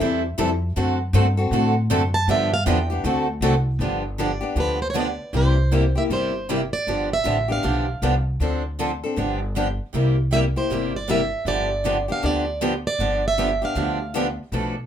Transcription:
0.00 upright bass E2, steel-string acoustic guitar E3 G3 C4 E4 A4
0.38 upright bass F2, steel-string acoustic guitar E3 G3 C4 E4 A4
0.76 upright bass F#2, steel-string acoustic guitar D3 A3 C4 F#4 A4
1.13 upright bass G2, steel-string acoustic guitar D3 A3 C4 F#4 A4
1.37 steel-string acoustic guitar C4 F#4 A4
1.51 upright bass A2, steel-string acoustic guitar D3 A3 C4 F#4 A4
1.90 upright bass F#2, steel-string acoustic guitar D3 A3 C4 F#4 A4
2.14 steel-string acoustic guitar A5
2.27 upright bass G2, steel-string acoustic guitar D3 F3 B3 D4 G4 E5
2.54 steel-string acoustic guitar F5
2.66 upright bass E2, steel-string acoustic guitar D3 F3 B3 D4 G4 G5
2.90 steel-string acoustic guitar B3 D4 G4
3.04 upright bass D2, steel-string acoustic guitar D3 A3 C4 F#4 A4
3.41 upright bass C2, steel-string acoustic guitar D3 A3 C4 F#4 A4
3.79 upright bass G1, steel-string acoustic guitar D3 F3 B3 D4 G4
4.18 steel-string acoustic guitar D3 F3 B3 D4 G4 D5
4.41 steel-string acoustic guitar B3 D4 G4
4.55 upright bass D2, steel-string acoustic guitar D3 F3 B3 D4 G4
4.60 steel-string acoustic guitar B4
4.82 steel-string acoustic guitar C5
4.90 steel-string acoustic guitar C#5
4.95 steel-string acoustic guitar D3 F3 B3 D4 G4
4.99 steel-string acoustic guitar D5
5.33 upright bass C2, steel-string acoustic guitar C3 G3 A#3 E4 G4 C5
5.72 steel-string acoustic guitar C3 G3 A#3 E4 G4
5.95 steel-string acoustic guitar A#3 E4 G4 E5
6.10 upright bass G1, steel-string acoustic guitar C3 G3 A#3 E4 G4 C5
6.49 steel-string acoustic guitar C3 G3 A#3 E4 G4
6.73 steel-string acoustic guitar D5
6.87 upright bass G1, steel-string acoustic guitar D3 F3 B3 D4 G4
7.13 steel-string acoustic guitar E5
7.24 upright bass A1, steel-string acoustic guitar D3 F3 B3 D4 G4
7.48 steel-string acoustic guitar B3 D4 G4 F5
7.63 upright bass B1, steel-string acoustic guitar D3 F3 B3 D4 G4
8.02 upright bass C2, steel-string acoustic guitar D3 F3 B3 D4 G4
8.40 upright bass D2, steel-string acoustic guitar D3 F3 C4 D4 A4
8.79 steel-string acoustic guitar D3 F3 C4 D4 A4
9.04 steel-string acoustic guitar C4 D4 A4
9.16 upright bass G1, steel-string acoustic guitar D3 F3 B3 D4 G4
9.56 steel-string acoustic guitar D3 F3 B3 D4 G4
9.94 upright bass C2, steel-string acoustic guitar C3 G3 A#3 E4 G4
10.33 steel-string acoustic guitar C3 G3 A#3 E4 G4 E5
10.56 steel-string acoustic guitar A#3 E4 G4 C5
10.71 upright bass G1, steel-string acoustic guitar C3 G3 A#3 E4 G4
10.96 steel-string acoustic guitar D5
11.09 steel-string acoustic guitar C3 G3 A#3 E4 G4 E5
11.45 upright bass G1, steel-string acoustic guitar D3 F3 B3 D4 G4 D5
11.85 steel-string acoustic guitar D3 F3 B3 D4 G4
12.08 steel-string acoustic guitar B3 D4 G4 F5
12.22 upright bass D2, steel-string acoustic guitar D3 F3 B3 D4 G4 D5
12.61 steel-string acoustic guitar D3 F3 B3 D4 G4
12.87 steel-string acoustic guitar D5
12.99 upright bass G1, steel-string acoustic guitar D3 F3 B3 D4 G4
13.28 steel-string acoustic guitar E5
13.38 steel-string acoustic guitar D3 F3 B3 D4 G4
13.62 steel-string acoustic guitar B3 D4 G4 F5
13.75 upright bass D2, steel-string acoustic guitar D3 F3 B3 D4 G4
14.14 steel-string acoustic guitar D3 F3 B3 D4 G4
14.52 upright bass B1, steel-string acoustic guitar B2 F3 A3 D4 A4 B4

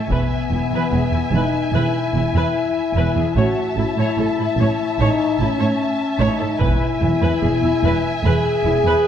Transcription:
0.09 double bass section E1, cello section E2, french horn section B3, viola section B4, violin section E5 G#5, taiko
0.50 double bass section E1, cello section E2, viola section E4
0.71 cello section E2, viola section B4
0.91 double bass section E1, cello section E2, viola section G#4
1.11 cello section E2, viola section E4
1.32 double bass section E1, cello section E2, french horn section D#4, viola section B4
1.72 double bass section E1, cello section E2, french horn section E4, viola section B4
2.13 double bass section E1, cello section E2, viola section E4
2.34 cello section E2, viola section B4
2.95 double bass section E1, cello section E2, viola section B4
3.16 cello section E2, viola section G#4
3.36 double bass section A1, cello section A2, french horn section F#4, viola section C#5, violin section E5 A5
3.76 double bass section A1, cello section A2, french horn section E4, viola section E4
3.98 cello section A2, viola section C#5
4.18 double bass section A1, cello section A2, viola section A4
4.39 cello section A2, viola section E4
4.57 double bass section A1, cello section A2, viola section C#5
4.99 double bass section A1, cello section A2, french horn section D#4, viola section C#5
5.40 double bass section A1, cello section A2, french horn section C#4, viola section E4
5.59 cello section A2, viola section C#5
6.19 double bass section A1, cello section A2, french horn section D#4, viola section C#5
6.40 cello section A2, viola section A4
6.59 double bass section E1, cello section E2, french horn section E4, viola section B4, violin section E5 G#5, taiko
7.01 double bass section E1, cello section E2, viola section E4
7.22 cello section E2, viola section B4
7.42 double bass section E1, cello section E2, viola section G#4
7.62 cello section E2, viola section E4
7.83 double bass section E1, cello section E2, viola section B4
8.23 double bass section E1, cello section E2, french horn section G#4, viola section B4
8.65 double bass section E1, cello section E2, viola section E4
8.84 cello section E2, viola section B4

